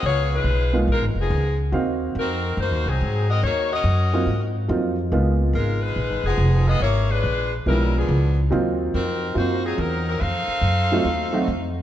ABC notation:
X:1
M:4/4
L:1/8
Q:"Swing" 1/4=142
K:Abmix
V:1 name="Saxophone section"
[_CFAd] [A,EF_c]2 z [A,EFB] [F,CEA]2 z | z2 [CEGB]2 [B,EGc] [G,CEA]2 [CGBe] | [B,EGd] [DGBe]4 z3 | z2 [A,EFB] [A,EF_c]2 [F,_CEA]2 [CFAe] |
[B,_F=Gd] [A,=D=F=B]2 z [=G,_D_F_B] [=F,=B,=DA]2 z | z2 [CEGB]2 [B,EGc] [G,CEA] [G,CEB] [G,CEB] | [E=Acf]6- [EAcf] z |]
V:2 name="Grand piano"
z3 [A,B,_CEF] z4 | [B,CEGf]4- [B,CEGf] z3 | z3 [G,B,CEF] z2 [G,B,CEF] z | [A,B,_CEF]3 z4 z |
z4 [F,A,=B,=D_F]3 z | [G,B,CEF]3 z [G,B,CEF]3 z | z3 [G,=A,CEF] z [G,A,CEG] z2 |]
V:3 name="Upright bass" clef=bass
D,,2 _C,,2 (3B,,, A,,, F,,, D,,2 | E,,2 F,,2 (3G,, E,, C,, A,,2 | E,,2 G,,2 A,,2 F,,2 | D,,2 A,,,2 (3B,,, A,,, F,,, F,,,2 |
A,,,2 B,,,2 =B,,,2 D,,2 | E,,2 F,,2 G,,2 _F,,2 | F,, z G,,2 E,,2 F,,2 |]